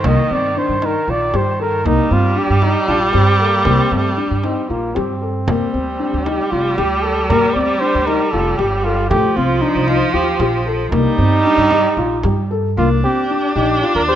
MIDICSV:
0, 0, Header, 1, 6, 480
1, 0, Start_track
1, 0, Tempo, 517688
1, 41, Time_signature, 7, 3, 24, 8
1, 9641, Tempo, 526778
1, 13063, End_track
2, 0, Start_track
2, 0, Title_t, "Flugelhorn"
2, 0, Program_c, 0, 56
2, 55, Note_on_c, 0, 75, 98
2, 296, Note_on_c, 0, 74, 89
2, 310, Note_off_c, 0, 75, 0
2, 539, Note_on_c, 0, 72, 88
2, 553, Note_off_c, 0, 74, 0
2, 792, Note_on_c, 0, 70, 85
2, 806, Note_off_c, 0, 72, 0
2, 1023, Note_on_c, 0, 74, 89
2, 1037, Note_off_c, 0, 70, 0
2, 1262, Note_on_c, 0, 72, 89
2, 1276, Note_off_c, 0, 74, 0
2, 1490, Note_off_c, 0, 72, 0
2, 1498, Note_on_c, 0, 70, 85
2, 1727, Note_on_c, 0, 63, 99
2, 1741, Note_off_c, 0, 70, 0
2, 1972, Note_on_c, 0, 65, 85
2, 1985, Note_off_c, 0, 63, 0
2, 2211, Note_on_c, 0, 67, 91
2, 2224, Note_off_c, 0, 65, 0
2, 2443, Note_on_c, 0, 63, 89
2, 2457, Note_off_c, 0, 67, 0
2, 2671, Note_off_c, 0, 63, 0
2, 2676, Note_on_c, 0, 62, 81
2, 2783, Note_off_c, 0, 62, 0
2, 2917, Note_on_c, 0, 60, 74
2, 3155, Note_on_c, 0, 58, 73
2, 3169, Note_off_c, 0, 60, 0
2, 3391, Note_on_c, 0, 60, 86
2, 3405, Note_off_c, 0, 58, 0
2, 3643, Note_on_c, 0, 57, 69
2, 3657, Note_off_c, 0, 60, 0
2, 3879, Note_off_c, 0, 57, 0
2, 4112, Note_on_c, 0, 60, 73
2, 4354, Note_on_c, 0, 58, 69
2, 4368, Note_off_c, 0, 60, 0
2, 4591, Note_on_c, 0, 60, 73
2, 4605, Note_off_c, 0, 58, 0
2, 5786, Note_on_c, 0, 67, 81
2, 5800, Note_off_c, 0, 60, 0
2, 6034, Note_on_c, 0, 65, 79
2, 6048, Note_off_c, 0, 67, 0
2, 6272, Note_on_c, 0, 67, 92
2, 6286, Note_off_c, 0, 65, 0
2, 6511, Note_on_c, 0, 69, 84
2, 6525, Note_off_c, 0, 67, 0
2, 6749, Note_off_c, 0, 69, 0
2, 6754, Note_on_c, 0, 70, 108
2, 6990, Note_on_c, 0, 74, 95
2, 7004, Note_off_c, 0, 70, 0
2, 7232, Note_on_c, 0, 72, 101
2, 7246, Note_off_c, 0, 74, 0
2, 7479, Note_on_c, 0, 70, 94
2, 7493, Note_off_c, 0, 72, 0
2, 7706, Note_on_c, 0, 69, 93
2, 7720, Note_off_c, 0, 70, 0
2, 7949, Note_on_c, 0, 67, 86
2, 7963, Note_off_c, 0, 69, 0
2, 8196, Note_on_c, 0, 65, 90
2, 8210, Note_off_c, 0, 67, 0
2, 8430, Note_off_c, 0, 65, 0
2, 8435, Note_on_c, 0, 67, 105
2, 8686, Note_on_c, 0, 65, 92
2, 8699, Note_off_c, 0, 67, 0
2, 8915, Note_on_c, 0, 63, 85
2, 8929, Note_off_c, 0, 65, 0
2, 9159, Note_on_c, 0, 65, 91
2, 9173, Note_off_c, 0, 63, 0
2, 9401, Note_on_c, 0, 67, 88
2, 9415, Note_off_c, 0, 65, 0
2, 9637, Note_on_c, 0, 65, 77
2, 9651, Note_off_c, 0, 67, 0
2, 9877, Note_off_c, 0, 65, 0
2, 10117, Note_on_c, 0, 63, 124
2, 11526, Note_off_c, 0, 63, 0
2, 11808, Note_on_c, 0, 65, 92
2, 11917, Note_off_c, 0, 65, 0
2, 12049, Note_on_c, 0, 67, 90
2, 12494, Note_off_c, 0, 67, 0
2, 12518, Note_on_c, 0, 67, 92
2, 12854, Note_off_c, 0, 67, 0
2, 12885, Note_on_c, 0, 70, 90
2, 12938, Note_off_c, 0, 70, 0
2, 13003, Note_on_c, 0, 72, 106
2, 13063, Note_off_c, 0, 72, 0
2, 13063, End_track
3, 0, Start_track
3, 0, Title_t, "Grand piano"
3, 0, Program_c, 1, 0
3, 41, Note_on_c, 1, 58, 79
3, 195, Note_off_c, 1, 58, 0
3, 282, Note_on_c, 1, 60, 60
3, 435, Note_off_c, 1, 60, 0
3, 521, Note_on_c, 1, 62, 74
3, 674, Note_off_c, 1, 62, 0
3, 760, Note_on_c, 1, 63, 74
3, 913, Note_off_c, 1, 63, 0
3, 1001, Note_on_c, 1, 65, 66
3, 1154, Note_off_c, 1, 65, 0
3, 1239, Note_on_c, 1, 67, 75
3, 1393, Note_off_c, 1, 67, 0
3, 1479, Note_on_c, 1, 69, 73
3, 1632, Note_off_c, 1, 69, 0
3, 1716, Note_on_c, 1, 58, 85
3, 1869, Note_off_c, 1, 58, 0
3, 1955, Note_on_c, 1, 60, 68
3, 2108, Note_off_c, 1, 60, 0
3, 2188, Note_on_c, 1, 62, 71
3, 2342, Note_off_c, 1, 62, 0
3, 2428, Note_on_c, 1, 63, 76
3, 2582, Note_off_c, 1, 63, 0
3, 2660, Note_on_c, 1, 65, 74
3, 2817, Note_off_c, 1, 65, 0
3, 2900, Note_on_c, 1, 67, 78
3, 3057, Note_off_c, 1, 67, 0
3, 3146, Note_on_c, 1, 69, 64
3, 3301, Note_off_c, 1, 69, 0
3, 3384, Note_on_c, 1, 58, 79
3, 3540, Note_off_c, 1, 58, 0
3, 3625, Note_on_c, 1, 60, 67
3, 3782, Note_off_c, 1, 60, 0
3, 3868, Note_on_c, 1, 62, 73
3, 4024, Note_off_c, 1, 62, 0
3, 4110, Note_on_c, 1, 63, 69
3, 4266, Note_off_c, 1, 63, 0
3, 4348, Note_on_c, 1, 65, 67
3, 4505, Note_off_c, 1, 65, 0
3, 4591, Note_on_c, 1, 67, 75
3, 4748, Note_off_c, 1, 67, 0
3, 4834, Note_on_c, 1, 69, 57
3, 4990, Note_off_c, 1, 69, 0
3, 5074, Note_on_c, 1, 58, 79
3, 5231, Note_off_c, 1, 58, 0
3, 5315, Note_on_c, 1, 60, 61
3, 5472, Note_off_c, 1, 60, 0
3, 5557, Note_on_c, 1, 62, 73
3, 5714, Note_off_c, 1, 62, 0
3, 5799, Note_on_c, 1, 63, 74
3, 5955, Note_off_c, 1, 63, 0
3, 6041, Note_on_c, 1, 65, 73
3, 6197, Note_off_c, 1, 65, 0
3, 6283, Note_on_c, 1, 67, 73
3, 6438, Note_off_c, 1, 67, 0
3, 6524, Note_on_c, 1, 69, 68
3, 6679, Note_off_c, 1, 69, 0
3, 6765, Note_on_c, 1, 58, 83
3, 6919, Note_off_c, 1, 58, 0
3, 7002, Note_on_c, 1, 60, 72
3, 7158, Note_off_c, 1, 60, 0
3, 7243, Note_on_c, 1, 62, 69
3, 7397, Note_off_c, 1, 62, 0
3, 7483, Note_on_c, 1, 63, 84
3, 7637, Note_off_c, 1, 63, 0
3, 7721, Note_on_c, 1, 65, 74
3, 7876, Note_off_c, 1, 65, 0
3, 7960, Note_on_c, 1, 67, 75
3, 8115, Note_off_c, 1, 67, 0
3, 8200, Note_on_c, 1, 69, 73
3, 8354, Note_off_c, 1, 69, 0
3, 8439, Note_on_c, 1, 57, 87
3, 8593, Note_off_c, 1, 57, 0
3, 8676, Note_on_c, 1, 60, 71
3, 8831, Note_off_c, 1, 60, 0
3, 8917, Note_on_c, 1, 62, 82
3, 9072, Note_off_c, 1, 62, 0
3, 9161, Note_on_c, 1, 63, 85
3, 9315, Note_off_c, 1, 63, 0
3, 9401, Note_on_c, 1, 65, 81
3, 9555, Note_off_c, 1, 65, 0
3, 9644, Note_on_c, 1, 67, 85
3, 9795, Note_off_c, 1, 67, 0
3, 9882, Note_on_c, 1, 69, 75
3, 10033, Note_off_c, 1, 69, 0
3, 10121, Note_on_c, 1, 58, 86
3, 10272, Note_off_c, 1, 58, 0
3, 10357, Note_on_c, 1, 60, 67
3, 10509, Note_off_c, 1, 60, 0
3, 10596, Note_on_c, 1, 62, 80
3, 10749, Note_off_c, 1, 62, 0
3, 10838, Note_on_c, 1, 63, 82
3, 10991, Note_off_c, 1, 63, 0
3, 11076, Note_on_c, 1, 65, 82
3, 11231, Note_off_c, 1, 65, 0
3, 11316, Note_on_c, 1, 67, 73
3, 11473, Note_off_c, 1, 67, 0
3, 11563, Note_on_c, 1, 69, 77
3, 11719, Note_off_c, 1, 69, 0
3, 11807, Note_on_c, 1, 58, 88
3, 11962, Note_off_c, 1, 58, 0
3, 12046, Note_on_c, 1, 60, 70
3, 12201, Note_off_c, 1, 60, 0
3, 12287, Note_on_c, 1, 62, 75
3, 12440, Note_off_c, 1, 62, 0
3, 12524, Note_on_c, 1, 63, 84
3, 12677, Note_off_c, 1, 63, 0
3, 12762, Note_on_c, 1, 65, 77
3, 12915, Note_off_c, 1, 65, 0
3, 12998, Note_on_c, 1, 67, 77
3, 13063, Note_off_c, 1, 67, 0
3, 13063, End_track
4, 0, Start_track
4, 0, Title_t, "Viola"
4, 0, Program_c, 2, 41
4, 0, Note_on_c, 2, 51, 80
4, 1716, Note_on_c, 2, 55, 122
4, 1730, Note_off_c, 2, 51, 0
4, 4839, Note_off_c, 2, 55, 0
4, 5074, Note_on_c, 2, 55, 104
4, 8439, Note_on_c, 2, 53, 113
4, 8453, Note_off_c, 2, 55, 0
4, 10121, Note_on_c, 2, 55, 107
4, 10134, Note_off_c, 2, 53, 0
4, 11564, Note_off_c, 2, 55, 0
4, 11804, Note_on_c, 2, 62, 123
4, 13063, Note_off_c, 2, 62, 0
4, 13063, End_track
5, 0, Start_track
5, 0, Title_t, "Upright bass"
5, 0, Program_c, 3, 32
5, 39, Note_on_c, 3, 36, 89
5, 153, Note_off_c, 3, 36, 0
5, 285, Note_on_c, 3, 43, 78
5, 509, Note_off_c, 3, 43, 0
5, 638, Note_on_c, 3, 43, 77
5, 865, Note_off_c, 3, 43, 0
5, 998, Note_on_c, 3, 34, 77
5, 1225, Note_off_c, 3, 34, 0
5, 1240, Note_on_c, 3, 43, 89
5, 1691, Note_off_c, 3, 43, 0
5, 1719, Note_on_c, 3, 36, 93
5, 1831, Note_off_c, 3, 36, 0
5, 1955, Note_on_c, 3, 43, 85
5, 2180, Note_off_c, 3, 43, 0
5, 2318, Note_on_c, 3, 43, 83
5, 2540, Note_off_c, 3, 43, 0
5, 2673, Note_on_c, 3, 34, 75
5, 2898, Note_off_c, 3, 34, 0
5, 2912, Note_on_c, 3, 43, 84
5, 3364, Note_off_c, 3, 43, 0
5, 3393, Note_on_c, 3, 36, 92
5, 3505, Note_off_c, 3, 36, 0
5, 3631, Note_on_c, 3, 43, 79
5, 3859, Note_off_c, 3, 43, 0
5, 3995, Note_on_c, 3, 43, 74
5, 4222, Note_off_c, 3, 43, 0
5, 4358, Note_on_c, 3, 34, 73
5, 4585, Note_off_c, 3, 34, 0
5, 4604, Note_on_c, 3, 43, 87
5, 5057, Note_off_c, 3, 43, 0
5, 5078, Note_on_c, 3, 31, 86
5, 5194, Note_off_c, 3, 31, 0
5, 5321, Note_on_c, 3, 38, 73
5, 5549, Note_off_c, 3, 38, 0
5, 5686, Note_on_c, 3, 38, 76
5, 5913, Note_off_c, 3, 38, 0
5, 6045, Note_on_c, 3, 29, 77
5, 6273, Note_off_c, 3, 29, 0
5, 6288, Note_on_c, 3, 38, 86
5, 6741, Note_off_c, 3, 38, 0
5, 6766, Note_on_c, 3, 31, 96
5, 6880, Note_off_c, 3, 31, 0
5, 7003, Note_on_c, 3, 38, 75
5, 7231, Note_off_c, 3, 38, 0
5, 7367, Note_on_c, 3, 38, 86
5, 7592, Note_off_c, 3, 38, 0
5, 7724, Note_on_c, 3, 29, 78
5, 7950, Note_off_c, 3, 29, 0
5, 7963, Note_on_c, 3, 31, 93
5, 8415, Note_off_c, 3, 31, 0
5, 8442, Note_on_c, 3, 33, 94
5, 8555, Note_off_c, 3, 33, 0
5, 8683, Note_on_c, 3, 36, 87
5, 8908, Note_off_c, 3, 36, 0
5, 9041, Note_on_c, 3, 36, 85
5, 9268, Note_off_c, 3, 36, 0
5, 9400, Note_on_c, 3, 39, 83
5, 9628, Note_off_c, 3, 39, 0
5, 9638, Note_on_c, 3, 34, 104
5, 10087, Note_off_c, 3, 34, 0
5, 10116, Note_on_c, 3, 36, 101
5, 10229, Note_off_c, 3, 36, 0
5, 10355, Note_on_c, 3, 43, 91
5, 10580, Note_off_c, 3, 43, 0
5, 10712, Note_on_c, 3, 43, 83
5, 10939, Note_off_c, 3, 43, 0
5, 11071, Note_on_c, 3, 34, 88
5, 11302, Note_off_c, 3, 34, 0
5, 11318, Note_on_c, 3, 43, 105
5, 11779, Note_off_c, 3, 43, 0
5, 11807, Note_on_c, 3, 36, 85
5, 12035, Note_off_c, 3, 36, 0
5, 12519, Note_on_c, 3, 34, 96
5, 12747, Note_off_c, 3, 34, 0
5, 12878, Note_on_c, 3, 39, 78
5, 13063, Note_off_c, 3, 39, 0
5, 13063, End_track
6, 0, Start_track
6, 0, Title_t, "Frame drum"
6, 38, Note_on_c, 9, 64, 68
6, 131, Note_off_c, 9, 64, 0
6, 280, Note_on_c, 9, 64, 18
6, 372, Note_off_c, 9, 64, 0
6, 762, Note_on_c, 9, 64, 47
6, 855, Note_off_c, 9, 64, 0
6, 1240, Note_on_c, 9, 64, 49
6, 1333, Note_off_c, 9, 64, 0
6, 1721, Note_on_c, 9, 64, 55
6, 1814, Note_off_c, 9, 64, 0
6, 1958, Note_on_c, 9, 64, 15
6, 2051, Note_off_c, 9, 64, 0
6, 2429, Note_on_c, 9, 64, 44
6, 2522, Note_off_c, 9, 64, 0
6, 2905, Note_on_c, 9, 64, 43
6, 2998, Note_off_c, 9, 64, 0
6, 3384, Note_on_c, 9, 64, 57
6, 3477, Note_off_c, 9, 64, 0
6, 3869, Note_on_c, 9, 64, 17
6, 3962, Note_off_c, 9, 64, 0
6, 4113, Note_on_c, 9, 64, 43
6, 4205, Note_off_c, 9, 64, 0
6, 4599, Note_on_c, 9, 64, 51
6, 4692, Note_off_c, 9, 64, 0
6, 5078, Note_on_c, 9, 64, 68
6, 5171, Note_off_c, 9, 64, 0
6, 5323, Note_on_c, 9, 64, 20
6, 5416, Note_off_c, 9, 64, 0
6, 5807, Note_on_c, 9, 64, 52
6, 5899, Note_off_c, 9, 64, 0
6, 6288, Note_on_c, 9, 64, 45
6, 6380, Note_off_c, 9, 64, 0
6, 6769, Note_on_c, 9, 64, 58
6, 6862, Note_off_c, 9, 64, 0
6, 7009, Note_on_c, 9, 64, 17
6, 7102, Note_off_c, 9, 64, 0
6, 7485, Note_on_c, 9, 64, 44
6, 7578, Note_off_c, 9, 64, 0
6, 7964, Note_on_c, 9, 64, 46
6, 8056, Note_off_c, 9, 64, 0
6, 8445, Note_on_c, 9, 64, 60
6, 8537, Note_off_c, 9, 64, 0
6, 8682, Note_on_c, 9, 64, 18
6, 8775, Note_off_c, 9, 64, 0
6, 9160, Note_on_c, 9, 64, 44
6, 9252, Note_off_c, 9, 64, 0
6, 9641, Note_on_c, 9, 64, 50
6, 9733, Note_off_c, 9, 64, 0
6, 10118, Note_on_c, 9, 64, 61
6, 10210, Note_off_c, 9, 64, 0
6, 10834, Note_on_c, 9, 64, 53
6, 10925, Note_off_c, 9, 64, 0
6, 11315, Note_on_c, 9, 64, 51
6, 11406, Note_off_c, 9, 64, 0
6, 11568, Note_on_c, 9, 64, 20
6, 11659, Note_off_c, 9, 64, 0
6, 13063, End_track
0, 0, End_of_file